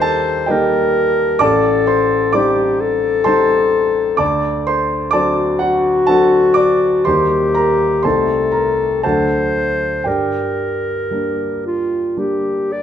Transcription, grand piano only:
0.00 1.45 D#2 medium
0.00 0.45 G3 soft
0.00 0.45 A#3 soft
0.00 0.49 D#4 medium
0.00 0.48 G4 medium
0.00 0.46 A4 medium
0.00 1.45 A#4 medium
0.00 0.48 D#5 medium
0.00 0.46 G5 loud
0.00 0.49 A5 loud
0.46 1.38 G3 medium
0.46 1.38 A#3 medium
0.46 1.38 D#4 medium
0.46 0.92 G4 medium
0.46 0.92 D#5 medium
0.46 0.95 G5 medium
1.39 2.31 A1 medium
1.39 1.84 D5 medium
1.39 1.84 A5 medium
1.39 1.87 D6 loud
1.87 2.30 C5 medium
1.87 2.34 C6 medium
2.33 3.23 G3 soft
2.33 3.23 C4 soft
2.33 3.23 D#4 soft
2.33 3.22 D5 medium
2.33 3.26 D6 medium
3.24 4.16 G3 soft
3.24 4.16 C4 soft
3.24 4.17 D#4 medium
3.24 4.16 C5 medium
3.24 4.15 A5 medium
3.24 4.19 C6 medium
4.17 5.11 D2 medium
4.17 4.63 D5 medium
4.17 4.63 A5 medium
4.17 4.66 D6 medium
4.67 5.11 C5 medium
4.67 5.14 C6 medium
5.11 6.04 F#3 soft
5.11 6.04 C4 soft
5.11 6.04 D4 soft
5.11 5.57 D5 medium
5.11 5.57 A5 medium
5.11 5.60 D6 loud
5.59 6.05 F#4 medium
5.59 6.07 F#5 medium
6.07 7.01 F#3 soft
6.07 7.01 C4 soft
6.07 7.02 D4 medium
6.07 6.53 A4 medium
6.07 6.53 F#5 medium
6.07 6.56 A5 medium
6.54 7.02 D5 medium
6.54 7.04 D6 medium
7.05 8.02 D#2 medium
7.05 8.01 G3 soft
7.05 8.01 A#3 soft
7.05 8.02 D#4 soft
7.05 7.52 C5 medium
7.05 7.54 C6 medium
7.55 8.01 A#4 medium
7.55 8.04 A#5 medium
8.03 9.01 C2 medium
8.03 9.00 A3 soft
8.03 9.00 D#4 soft
8.03 8.50 C5 medium
8.03 8.50 A5 medium
8.03 8.53 C6 medium
8.52 9.00 A#4 medium
8.52 9.02 A#5 medium
9.03 10.04 D2 soft
9.03 10.03 F#3 soft
9.03 10.03 A3 soft
9.03 10.04 D4 soft
9.03 10.03 A4 medium
9.03 10.03 F#5 medium
9.03 10.06 A5 medium
10.04 11.09 G2 soft
10.04 12.65 G4 soft
10.04 12.65 D5 soft
10.04 12.68 G5 medium
11.11 12.12 G3 soft
11.11 12.12 A#3 soft
11.11 12.12 D4 soft
12.17 12.83 G3 soft
12.17 12.83 A#3 soft
12.17 12.83 D4 soft

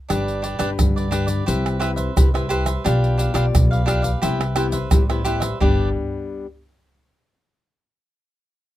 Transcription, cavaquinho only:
0.09 0.41 D4 medium
0.09 0.41 G4 medium
0.09 0.42 B4 medium
0.09 0.42 D5 medium
0.42 0.57 D4 soft
0.42 0.58 G4 soft
0.42 0.58 B4 medium
0.42 0.58 D5 medium
0.59 0.69 D4 medium
0.59 0.69 G4 medium
0.59 0.69 B4 medium
0.59 0.70 D5 medium
0.96 1.10 G4 soft
0.96 1.11 B4 soft
0.96 1.11 D5 soft
1.11 1.28 D4 medium
1.11 1.27 G4 medium
1.11 1.27 B4 medium
1.11 1.26 D5 medium
1.27 1.45 G4 soft
1.27 1.45 B4 soft
1.27 1.44 D5 soft
1.46 1.78 G4 medium
1.46 1.79 B4 medium
1.46 1.79 C5 medium
1.46 1.79 E5 medium
1.80 1.90 G4 medium
1.80 1.90 B4 medium
1.80 1.90 C5 medium
1.80 1.90 E5 medium
1.96 2.31 B4 soft
1.96 2.32 C5 soft
1.96 2.31 E5 soft
2.34 2.49 B4 soft
2.34 2.49 C5 soft
2.34 2.50 E5 soft
2.49 2.66 G4 medium
2.49 2.65 B4 medium
2.49 2.66 C5 medium
2.49 2.65 E5 medium
2.66 2.83 B4 soft
2.66 2.83 C5 soft
2.66 2.83 E5 soft
2.84 3.16 D4 medium
2.84 3.17 G4 medium
2.84 3.17 B4 medium
2.84 3.18 F5 medium
3.18 3.33 D4 soft
3.18 3.33 G4 soft
3.18 3.33 B4 medium
3.18 3.33 F5 medium
3.34 3.44 D4 medium
3.34 3.45 G4 medium
3.34 3.45 B4 medium
3.34 3.45 F5 medium
3.71 3.85 G4 soft
3.71 3.86 B4 soft
3.71 3.86 F5 medium
3.86 4.03 D4 medium
3.86 4.02 G4 medium
3.86 4.02 B4 medium
3.86 4.01 F5 medium
4.02 4.20 G4 soft
4.02 4.20 B4 soft
4.02 4.20 F5 medium
4.22 4.54 G4 medium
4.22 4.55 B4 medium
4.22 4.55 C5 medium
4.22 4.55 E5 medium
4.55 4.65 G4 medium
4.55 4.66 B4 medium
4.55 4.66 C5 medium
4.55 4.66 E5 medium
4.72 5.07 B4 soft
4.72 5.07 C5 soft
4.72 5.06 E5 soft
5.09 5.24 B4 soft
5.09 5.24 C5 soft
5.09 5.25 E5 soft
5.25 5.41 G4 medium
5.25 5.40 B4 medium
5.25 5.41 C5 medium
5.25 5.39 E5 medium
5.40 5.58 B4 soft
5.40 5.58 C5 soft
5.40 5.58 E5 medium
5.60 5.88 D4 medium
5.60 5.88 G4 medium
5.60 5.89 B4 medium
5.60 5.89 D5 medium

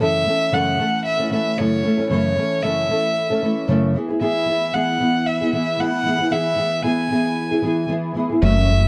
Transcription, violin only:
0.02 0.55 E5 medium
0.54 1.05 F#5 medium
1.05 1.30 E5 medium
1.33 1.60 E5 medium
1.58 2.10 C#5 medium
2.10 2.64 C#5 medium
2.63 3.68 E5 medium
4.22 4.76 E5 medium
4.74 5.28 F#5 medium
5.27 5.53 E5 medium
5.53 5.82 E5 medium
5.80 6.33 F#5 medium
6.32 6.84 E5 medium
6.85 7.86 G#5 medium
8.43 8.88 E5 loud

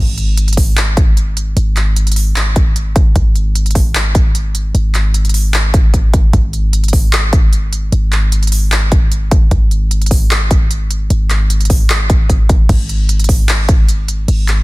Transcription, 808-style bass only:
0.00 1.55 G#1 medium
1.57 3.14 G#1 medium
3.16 4.73 G#1 medium
4.75 6.32 G#1 medium
6.33 7.91 G#1 medium
7.92 9.49 G#1 medium
9.51 11.08 G#1 medium
11.10 12.67 G#1 medium
12.69 14.26 G#1 medium
14.28 14.63 G#1 medium

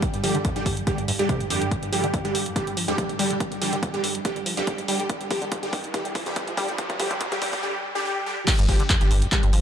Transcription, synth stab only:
0.24 0.35 D3 loud
0.24 0.35 G3 medium
0.24 0.35 G4 loud
0.56 0.67 D3 medium
0.56 0.67 G3 medium
0.56 0.67 G4 medium
0.87 0.99 D3 medium
0.87 0.99 G3 medium
0.87 0.99 G4 medium
1.19 1.37 D3 loud
1.19 1.37 G3 medium
1.19 1.37 G4 loud
1.50 1.62 D3 loud
1.50 1.62 G3 medium
1.50 1.62 G4 loud
1.92 2.04 D3 loud
1.92 2.04 G3 medium
1.92 2.04 G4 loud
2.25 2.35 D3 medium
2.25 2.35 G3 medium
2.25 2.36 G4 medium
2.56 2.68 D3 medium
2.56 2.68 G3 medium
2.56 2.68 G4 medium
2.88 3.06 D3 loud
2.88 3.06 G3 medium
2.88 3.06 G4 loud
3.19 3.31 D3 loud
3.19 3.31 G3 medium
3.19 3.31 G4 loud
3.61 3.73 D3 loud
3.61 3.73 G3 medium
3.61 3.73 G4 loud
3.94 4.05 D3 medium
3.94 4.04 G3 medium
3.94 4.04 G4 medium
4.25 4.37 D3 medium
4.25 4.37 G3 medium
4.25 4.37 G4 medium
4.57 4.75 D3 medium
4.57 4.75 G3 medium
4.57 4.75 G4 loud
4.88 5.00 D3 loud
4.88 5.00 G3 medium
4.88 5.00 G4 loud
5.31 5.42 D3 loud
5.31 5.42 G3 medium
5.31 5.42 G4 loud
5.63 5.74 D3 medium
5.63 5.74 G3 medium
5.63 5.74 G4 medium
5.94 6.06 D3 medium
5.94 6.06 G3 medium
5.94 6.06 G4 medium
6.26 6.44 D3 loud
6.26 6.44 G3 medium
6.26 6.44 G4 loud
6.57 6.69 D3 loud
6.57 6.69 G3 medium
6.57 6.69 G4 loud
6.99 7.11 D3 loud
6.99 7.11 G3 medium
6.99 7.11 G4 loud
7.32 7.43 D3 medium
7.32 7.43 G3 medium
7.32 7.43 G4 medium
7.63 7.75 D3 medium
7.63 7.75 G3 medium
7.63 7.75 G4 medium
7.95 8.04 D3 loud
7.95 8.04 G3 medium
7.95 8.04 G4 loud
8.05 8.23 D3 medium
8.05 8.23 G3 medium
8.05 8.23 G4 medium
8.26 8.38 D3 medium
8.26 8.38 G3 medium
8.26 8.38 G4 medium
8.69 8.80 D3 loud
8.69 8.80 G3 medium
8.69 8.80 G4 loud
9.01 9.12 D3 medium
9.01 9.12 G3 medium
9.01 9.12 G4 medium
9.32 9.44 D3 medium
9.32 9.44 G3 medium
9.32 9.44 G4 medium

